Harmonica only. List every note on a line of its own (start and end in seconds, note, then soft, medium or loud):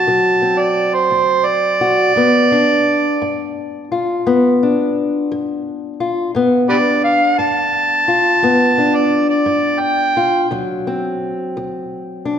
0.00 0.61 A5 medium
0.59 0.96 D5 medium
0.94 1.48 C5 medium
1.46 3.51 D5 loud
6.69 6.77 G4 medium
6.69 6.77 B4 medium
6.69 7.03 D5 medium
7.04 7.37 F5 medium
7.39 8.97 A5 loud
8.96 9.29 D5 medium
9.30 9.82 D5 medium
9.80 10.48 G5 loud